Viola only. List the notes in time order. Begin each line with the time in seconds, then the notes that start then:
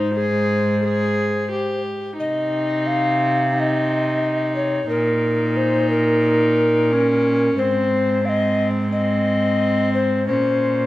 0.15 G#4
0.84 G#4
1.52 G4
2.19 D#4
3.55 D#4
4.90 D#4
6.92 C#4
7.58 C4
8.25 C4
8.92 C4
10.28 C#4